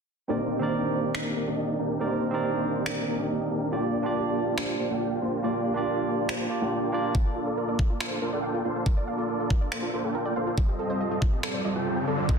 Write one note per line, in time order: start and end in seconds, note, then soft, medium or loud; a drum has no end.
0.28 1.12 A#3 loud
0.28 0.58 C4 medium
0.28 1.12 D4 medium
0.28 0.58 D#4 medium
0.28 1.12 D#4 medium
0.28 1.12 G4 medium
0.28 0.59 G4 medium
0.28 0.59 A#4 medium
0.28 1.12 C5 loud
0.28 0.59 D5 medium
0.59 1.97 D#3 medium
0.59 1.97 C4 medium
0.59 1.98 G4 medium
0.59 1.98 A#4 medium
0.63 1.99 D5 medium
1.15 1.33 D4 medium
1.15 1.33 D#4 medium
1.15 finger snap medium
1.36 1.45 A#3 medium
1.36 1.45 D4 medium
1.36 1.45 D#4 medium
1.36 1.45 G4 medium
1.36 1.45 A#4 medium
1.47 1.76 A#3 medium
1.47 1.76 D4 medium
1.47 1.76 D#4 medium
1.47 1.76 G4 medium
1.47 1.76 D#5 medium
1.79 1.98 A#3 medium
1.79 1.98 D4 medium
1.79 1.98 D#4 medium
1.79 1.98 G4 medium
1.79 1.98 A#4 loud
1.99 2.84 A#3 medium
1.99 2.30 C4 medium
1.99 2.84 D4 medium
1.99 2.30 D#4 medium
1.99 2.84 D#4 medium
1.99 2.84 G4 medium
1.99 2.30 G4 medium
1.99 2.30 A#4 medium
1.99 2.84 C5 loud
1.99 2.31 D5 medium
2.31 3.69 D#3 medium
2.31 3.68 C4 medium
2.31 3.69 G4 medium
2.31 3.70 A#4 medium
2.35 3.70 D5 medium
2.86 3.04 A#3 medium
2.86 3.04 D4 medium
2.86 3.04 D#4 medium
2.86 3.04 A#4 medium
2.86 finger snap medium
3.07 3.17 A#3 medium
3.07 3.17 D4 medium
3.07 3.17 D#4 medium
3.07 3.17 G4 medium
3.07 3.17 A#4 medium
3.18 3.48 A#3 medium
3.18 3.48 D4 medium
3.18 3.48 D#4 medium
3.18 3.48 G4 medium
3.18 3.48 D#5 medium
3.50 3.69 A#3 medium
3.50 3.69 D4 medium
3.50 3.69 D#4 medium
3.50 3.69 G4 medium
3.50 3.69 A#4 loud
3.71 4.01 A#3 medium
3.71 4.55 A#3 medium
3.71 4.01 D4 medium
3.71 4.55 D4 medium
3.71 4.01 F4 medium
3.71 4.55 F4 medium
3.71 4.55 G4 medium
3.71 4.02 G4 medium
3.71 4.55 D5 loud
3.71 4.02 D5 medium
4.02 5.40 A#3 medium
4.02 5.40 D4 medium
4.02 5.41 F4 medium
4.02 5.41 G4 medium
4.06 5.42 D5 medium
4.58 4.76 A#3 medium
4.58 4.76 D4 medium
4.58 4.76 C5 medium
4.58 finger snap medium
4.79 4.88 A#3 medium
4.79 4.88 D4 medium
4.79 4.88 F4 medium
4.79 4.88 G4 medium
4.79 4.88 C5 medium
4.90 5.19 A#3 medium
4.90 5.19 D4 medium
4.90 5.19 F4 medium
4.90 5.19 G4 medium
4.90 5.19 G5 medium
5.22 5.41 A#3 medium
5.22 5.41 D4 medium
5.22 5.41 F4 medium
5.22 5.41 G4 medium
5.22 5.41 C5 loud
5.42 5.72 A#3 medium
5.42 6.26 A#3 medium
5.42 5.73 D4 medium
5.42 6.26 D4 medium
5.42 6.26 F4 medium
5.42 5.73 F4 medium
5.42 6.26 G4 medium
5.42 5.73 G4 medium
5.42 6.26 D5 loud
5.42 5.73 D5 medium
5.73 6.47 A#3 medium
5.73 6.48 D4 medium
5.73 6.48 F4 medium
5.73 6.49 G4 medium
5.73 6.49 D5 medium
6.29 6.47 A#3 medium
6.29 6.47 D4 medium
6.29 6.47 F4 medium
6.29 6.47 G4 medium
6.29 6.47 C5 medium
6.29 finger snap medium
6.49 6.60 A#3 medium
6.49 6.60 D4 medium
6.49 6.61 F4 medium
6.49 6.61 G4 medium
6.49 6.61 D5 medium
6.61 6.91 A#3 medium
6.61 6.91 D4 medium
6.61 6.91 F4 medium
6.61 6.91 G4 medium
6.61 6.91 G5 medium
6.92 7.12 A#3 medium
6.92 7.12 D4 medium
6.92 7.12 F4 medium
6.92 7.12 G4 medium
6.92 7.13 D5 loud
6.92 7.12 F5 medium
7.15 7.98 A#3 medium
7.15 7.22 F5 medium
7.15 kick loud
7.26 7.30 F4 loud
7.36 7.40 F4 medium
7.47 7.54 A4 medium
7.58 7.65 A#4 loud
7.68 7.75 D5 loud
7.79 7.86 F5 medium
7.79 kick loud
7.90 7.94 F4 loud
8.00 8.19 A#3 medium
8.00 8.19 D4 medium
8.00 8.19 F4 medium
8.00 8.05 F4 medium
8.00 8.19 A4 medium
8.00 8.19 C5 medium
8.00 finger snap medium
8.11 8.18 A4 medium
8.22 8.31 A#3 medium
8.22 8.31 D4 medium
8.22 8.31 F4 medium
8.22 8.31 A4 medium
8.22 8.29 A#4 loud
8.22 8.31 C5 medium
8.33 8.62 A#3 medium
8.33 8.62 D4 medium
8.33 8.62 F4 medium
8.33 8.62 A4 medium
8.33 8.40 D5 loud
8.33 8.62 G5 loud
8.43 8.50 F5 medium
8.54 8.58 F4 medium
8.65 8.84 A#3 medium
8.65 8.84 D4 medium
8.65 8.69 F4 medium
8.65 8.84 F4 medium
8.65 8.84 A4 medium
8.65 8.84 C5 loud
8.75 8.83 A4 medium
8.86 8.93 A#4 loud
8.86 kick loud
8.97 9.04 D5 loud
9.08 9.15 F5 medium
9.18 9.23 F4 medium
9.29 9.33 F4 medium
9.40 9.47 A4 medium
9.50 9.58 A#4 loud
9.50 kick medium
9.61 9.68 D5 loud
9.72 9.90 A#3 medium
9.72 9.90 D4 medium
9.72 9.90 F4 medium
9.72 9.90 A4 medium
9.72 9.90 C5 medium
9.72 9.79 F5 medium
9.72 finger snap medium
9.83 9.87 F4 medium
9.93 10.02 A#3 medium
9.93 10.02 D4 medium
9.93 9.98 F4 medium
9.93 10.02 F4 medium
9.93 10.03 A4 medium
9.93 10.02 C5 medium
10.04 10.34 A#3 medium
10.04 10.34 D4 medium
10.04 10.34 F4 medium
10.04 10.11 A4 medium
10.04 10.34 A4 medium
10.04 10.34 G5 loud
10.15 10.22 A#4 loud
10.25 10.32 D5 loud
10.36 10.55 A#3 medium
10.36 10.55 D4 medium
10.36 10.55 F4 medium
10.36 10.55 A4 medium
10.36 10.55 C5 loud
10.36 10.43 F5 medium
10.47 10.51 F4 loud
10.58 11.41 G3 medium
10.58 11.41 C4 medium
10.58 10.62 F4 medium
10.58 11.41 D#5 loud
10.58 kick loud
10.58 riser medium
10.68 10.75 G4 medium
10.79 10.86 A4 loud
10.90 10.97 C5 loud
11.00 11.08 D#5 medium
11.11 11.15 F4 medium
11.22 11.26 F4 medium
11.22 kick loud
11.33 11.40 G4 medium
11.43 11.62 G3 medium
11.43 11.62 C4 medium
11.43 11.62 F4 medium
11.43 11.62 A4 medium
11.43 11.50 A4 loud
11.43 11.61 D5 medium
11.43 finger snap medium
11.54 11.61 C5 medium
11.65 11.74 G3 medium
11.65 11.74 C4 medium
11.65 11.74 F4 medium
11.65 11.74 A4 medium
11.65 11.74 D5 medium
11.65 11.72 D#5 medium
11.75 12.05 G3 medium
11.75 12.05 C4 medium
11.75 11.80 F4 loud
11.75 12.05 F4 medium
11.75 12.05 A4 medium
11.75 12.05 G5 medium
11.86 11.90 F4 medium
11.97 12.04 G4 medium
12.07 12.26 G3 medium
12.07 12.26 C4 medium
12.07 12.26 F4 medium
12.07 12.15 A4 loud
12.07 12.26 A4 medium
12.07 12.26 D5 loud
12.18 12.25 C5 loud
12.29 12.39 F4 medium
12.29 12.39 A4 medium
12.29 12.36 D#5 medium
12.29 kick loud